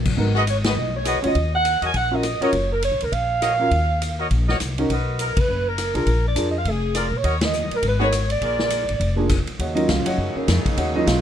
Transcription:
Already playing: A#1
0.05 kick, crash
0.17 G#1 B3 D#4 F#4 A#4, kick
0.35 F#4 G#4 B4 D#5
0.47 C#5, hi-hat pedal, ride
0.64 F#4 G#4 B4 D#5, snare, ride
0.77 B1
0.96 C#5
1.05 F#4 G#4 B4 D#5, cross-stick, hi-hat pedal, ride
1.15 D#2
1.22 D2 C#4 F4 F#4 C#5, ride
1.26 D#5
1.35 D#2, kick, ride
1.55 F#5
1.65 hi-hat pedal, ride
1.81 E2 F#4 A#4 C#5 D#5, ride
1.86 G#5
1.94 A#1 F#5, kick, ride
2.11 C#4 F4 F#4 A#4 D#5
2.23 cross-stick, hi-hat pedal, ride
2.41 C#4 F4 F#4 A#4 C#5 D#5, muted upright bass stroke, ride
2.53 F#1, kick, ride
2.73 A#4
2.82 C#5, hi-hat pedal, ride
2.92 A#1
3.01 C#2 A#4, ride
3.12 A#1 F5, kick, ride
3.41 F#4 A#4 C#5 D#5, cross-stick, hi-hat pedal, ride
3.59 C#4 F4 F#4 A#4
3.71 D#2, kick, ride
4.02 hi-hat pedal, ride
4.18 F#4 A#4 C#5 D#5
4.30 A#1, kick, ride
4.48 F#4 A#4 C#5 D#5, snare
4.60 C2, cross-stick, hi-hat pedal, ride
4.78 C#4 D#4 F#4 A#4, ride
4.90 B1 F#4 A#4 B4 D#5, kick, ride
5.19 A#4, hi-hat pedal, ride
5.37 B4, muted upright bass stroke, kick, ride
5.49 F#1
5.68 A#4
5.78 cross-stick, hi-hat pedal, ride
5.94 B1 D4 F4 G#4 A#4, ride
6.06 A#1, kick, ride
6.27 D5
6.35 F2 D4 F4 G#4 A#4, hi-hat pedal, ride
6.51 D#5
6.58 F5
6.65 F1, kick, ride
6.70 G#4
6.95 F4 G#4 A#4 D5, cross-stick, hi-hat pedal, ride
7.11 A#2
7.16 C#5
7.23 D#2 F#4 A#4 C#5 D#5, kick, ride
7.41 D#5, snare, ride
7.53 hi-hat pedal
7.71 muted upright bass stroke, ride
7.75 A#4
7.83 G#1, kick, ride
7.87 B4
7.99 B3 D#4 F#4 G#4 A#4 B4 C#5
8.03 C#5
8.12 cross-stick, hi-hat pedal, ride
8.30 D5, ride
8.41 A#1 F4 G#4 A#4 D5, kick, ride
8.59 snare
8.70 hi-hat pedal, ride
8.89 G#1, ride
9.00 F1, kick, ride
9.16 A#3 D4 F4 G#4
9.29 kick, cross-stick, hi-hat pedal, crash, ride
9.47 muted upright bass stroke, ride
9.58 D#2 C#3 F#3 A#3 D#4 F#4 C#5 D#5 F#5, kick, ride
9.75 F#3 C#4 D#4 F4 F#4 A#4 D#5, ride
9.89 C#2 F4 F5, kick, snare, hi-hat pedal, ride
10.06 F#4 C#5 D#5 F#5, muted upright bass stroke, ride
10.18 F#2, kick
10.36 C#4 F#4 A#4 C#5, muted upright bass stroke
10.48 F2, kick, snare, hi-hat pedal, ride
10.65 muted upright bass stroke, kick, ride
10.77 D#2 F#4 C#5 D#5 F#5, kick, ride
10.95 F#3 C#4 D#4 F4 F#4 A#4 D#5
11.06 B1 F4 F5, kick, snare, hi-hat pedal, ride

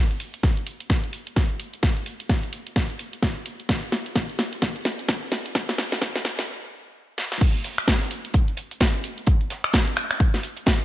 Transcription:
0.11 closed hi-hat
0.20 open hi-hat
0.34 closed hi-hat
0.43 kick, snare
0.57 closed hi-hat
0.67 open hi-hat
0.80 closed hi-hat
0.90 kick, snare
1.04 closed hi-hat
1.13 open hi-hat
1.27 closed hi-hat
1.36 kick, snare
1.60 open hi-hat
1.73 closed hi-hat
1.83 kick, snare
1.97 closed hi-hat
2.06 open hi-hat
2.20 closed hi-hat
2.29 kick, snare
2.43 closed hi-hat
2.53 open hi-hat
2.67 closed hi-hat
2.76 kick, snare
2.90 closed hi-hat
2.99 open hi-hat
3.13 closed hi-hat
3.23 kick, snare
3.46 open hi-hat
3.60 closed hi-hat
3.69 kick, snare
3.83 closed hi-hat
3.92 snare, open hi-hat
4.06 closed hi-hat
4.16 kick, snare
4.29 closed hi-hat
4.39 snare, open hi-hat
4.53 closed hi-hat
4.62 kick, snare
4.76 closed hi-hat
4.85 snare, open hi-hat
4.99 closed hi-hat
5.09 kick, snare
5.32 snare, open hi-hat
5.46 closed hi-hat
5.55 kick, snare
5.69 snare, closed hi-hat
5.78 snare, open hi-hat
5.92 snare, closed hi-hat
6.02 kick, snare
6.16 snare, closed hi-hat
6.25 snare, open hi-hat
6.39 snare, closed hi-hat
7.18 snare
7.32 snare
7.41 kick, closed hi-hat, crash
7.55 closed hi-hat
7.64 snare, closed hi-hat, open hi-hat
7.78 finger snap, closed hi-hat
7.87 kick, snare, closed hi-hat
8.01 snare, closed hi-hat
8.11 closed hi-hat, open hi-hat
8.25 closed hi-hat
8.34 kick, closed hi-hat
8.48 closed hi-hat
8.57 closed hi-hat, open hi-hat
8.71 closed hi-hat
8.80 kick, snare, closed hi-hat
9.04 closed hi-hat, open hi-hat
9.18 closed hi-hat
9.27 kick, closed hi-hat
9.41 closed hi-hat
9.50 snare, closed hi-hat, open hi-hat
9.64 finger snap, closed hi-hat
9.73 kick, snare, closed hi-hat
9.87 closed hi-hat
9.96 finger snap, closed hi-hat, open hi-hat
10.11 finger snap, snare, closed hi-hat
10.20 kick, closed hi-hat
10.34 snare, closed hi-hat
10.43 closed hi-hat, open hi-hat
10.57 closed hi-hat
10.66 kick, snare, closed hi-hat

